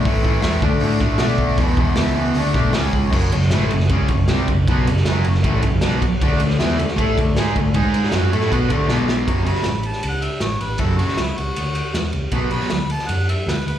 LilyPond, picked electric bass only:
\new Staff \with { instrumentName = "Picked electric bass" } { \clef bass \time 4/4 \key fis \minor \tempo 4 = 157 a,,4 e,8 d,8 a,4 b,4 | e,,4 cis,4 d,8 b,8 cis,4 | fis,,8 fis,,8 a,,8 fis,,8 cis,8 fis,,8 bis,,8 fis,,8 | b,,8 fis,,8 fis,,8 fis,,8 a,,8 fis,,8 b,,8 r8 |
d,8 d,8 e,8 d,8 a,8 d,8 gis,8 d,8 | gis,4 fis,8 a,8 b,8 d,8 b,,4 | fis,,4 a,,4 cis,4 a,,8 a,,8 | fis,,4 cis,8 cis,8 d,4 e,8 cis,8 |
b,,4 d,4 fis,4 d,8 d,8 | }